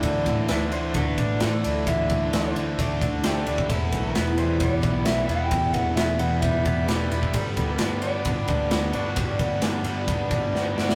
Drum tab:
RD |x-x-x-x-x-x-x-x-|x-x-x-x-x-x-x-x-|x-x-x-x-x-x-x-x-|x-x-x-x-x-x-x-x-|
SD |----o-------o---|----o-------o---|----o-------o---|----o-------o---|
BD |o-o-----o-o-----|o-o-----o-o----o|o-o-----o-o-----|o-o-----o-o----o|

RD |x-x-x-x-x-x-x-x-|x-x-x-x-x-x-----|
SD |----o-------o---|----o-------o-oo|
BD |o-o-----o-o-----|o-o-----o-o-----|